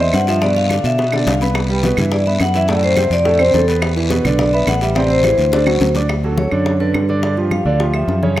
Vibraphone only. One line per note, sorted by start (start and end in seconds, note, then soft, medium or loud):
0.01 0.14 E5 medium
0.14 0.20 F#5 medium
0.29 0.41 E5 medium
0.43 0.49 D5 loud
0.56 0.82 F5 loud
0.85 1.11 E5 loud
1.13 1.27 D5 loud
1.28 1.47 F5 medium
1.70 2.13 B4 medium
2.13 2.19 D5 medium
2.27 2.41 E5 medium
2.42 2.54 F#5 medium
2.56 2.68 E5 medium
2.70 2.82 D5 loud
2.84 3.10 C5 medium
3.13 3.41 D5 loud
3.41 3.53 C5 medium
3.55 3.74 A4 medium
3.97 4.41 B4 medium
4.40 4.53 D5 medium
4.54 4.60 E5 medium
4.68 4.82 F#5 medium
4.83 4.97 E5 medium
4.96 5.02 D5 medium
5.11 5.92 C5 medium
6.38 6.77 C#5 medium
6.80 7.07 B4 medium
7.52 7.91 F5 medium
7.95 8.21 E5 medium